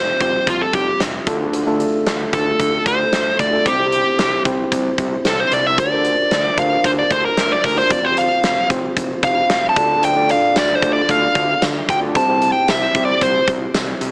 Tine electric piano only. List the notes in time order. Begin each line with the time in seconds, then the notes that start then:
Already playing: G3 C4 F4 G4
0.20 G3 C4 F4 G4
1.26 A3 D4 F4 A4
1.66 A3 D4 F4 A4
2.33 A3 D4 F4 A4
3.52 A3 D4 F4 A4
3.65 C4 E4 C5
3.78 C4 E4 G4 C5
4.45 C4 E4 G4 C5
5.77 D4 F4 A#4 C5
5.91 D4 F4 A#4 C5
6.57 D4 F4 A#4 C5
7.77 D4 F4 A#4 C5
7.90 C4 F4 G4 C5
8.03 C4 F4 G4 C5
8.69 C4 F4 G4 C5
9.76 D4 F4 A4 D5
10.16 D4 F4 A4 D5
10.82 D4 F4 A4 D5
12.01 D4 F4 A4 D5
12.15 C4 E4 G4 C5
12.28 C4 E4 G4 C5
12.94 C4 E4 G4 C5